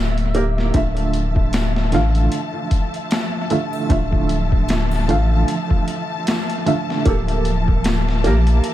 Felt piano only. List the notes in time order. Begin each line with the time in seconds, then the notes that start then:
Already playing: A#3 G4 A#4
0.34 A#3 G4 A#4
0.74 D3 A3 F4 E5
1.92 D3 A3 F4 F5
3.50 D3 A3 F4 E5
3.89 D3 A3 F4 E5
5.08 D3 A3 F4 F5
6.66 D3 A3 F4 E5
7.05 A#3 G4 A4
8.24 A#3 G4 A#4